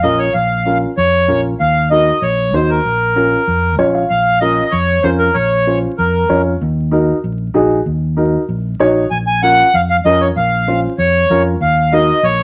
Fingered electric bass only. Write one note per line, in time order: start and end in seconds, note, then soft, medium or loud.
0.03 0.28 A#1 medium
0.34 0.85 A#1 medium
0.97 1.30 F2 loud
1.29 1.54 A#1 medium
1.60 2.10 D#2 medium
2.22 2.54 A#1 loud
2.54 2.79 D#2 medium
2.85 3.35 A#1 loud
3.47 3.79 F2 loud
3.79 4.04 A#1 medium
4.10 4.60 A#1 medium
4.72 4.98 F2 medium
5.04 5.29 F2 medium
5.35 5.85 A#1 loud
5.99 6.23 F2 loud
6.30 6.55 F2 medium
6.61 7.11 D#2 loud
7.24 7.49 A#1 loud
7.55 7.80 A#1 medium
7.86 8.36 D#2 medium
8.49 8.74 A#1 loud
8.80 9.05 A#1 medium
9.11 9.61 A#1 medium
9.74 9.99 F2 medium
10.05 10.30 F2 medium
10.36 10.86 A#1 loud
10.98 11.24 F2 loud
11.30 11.55 F2 loud
11.61 12.11 D#2 loud
12.23 12.43 A#1 loud